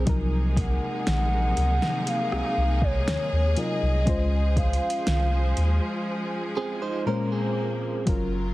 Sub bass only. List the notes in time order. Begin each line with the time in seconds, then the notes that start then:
0.07 C2
1.07 A#1
1.57 C#2
2.32 C2
2.57 C2
3.07 D#2
3.32 D#2
3.82 C2
4.07 C#2
5.07 C2
5.57 D#2
8.07 F#1